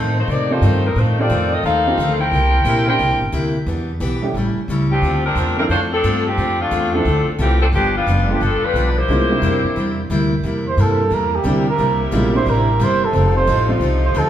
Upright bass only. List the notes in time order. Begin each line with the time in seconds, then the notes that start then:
Already playing: A2
0.28 C3
0.61 G2
0.96 A2
1.29 F2
1.63 D#2
1.98 D2
2.31 C2
2.65 A#1
2.99 C2
3.10 A#1
3.21 G1
3.32 D2
3.66 E2
4.00 B1
4.34 A1
4.56 muted upright bass stroke
4.68 C#2
5.02 D2
5.35 E2
5.69 F2
6.04 G2
6.37 F2
6.71 E2
7.05 D2
7.27 muted upright bass stroke
7.39 C2
7.72 G1
8.07 F1
8.41 G1
8.63 muted upright bass stroke
8.74 B1
9.08 C2
9.42 F2
9.64 muted upright bass stroke
9.76 E2
10.10 D2
10.43 E2
10.77 G2
11.11 E2
11.45 D2
11.79 C2
12.12 A#1
12.46 A1
12.80 G1
13.13 F1
13.47 A1
13.80 C2
14.14 D2
14.24 C2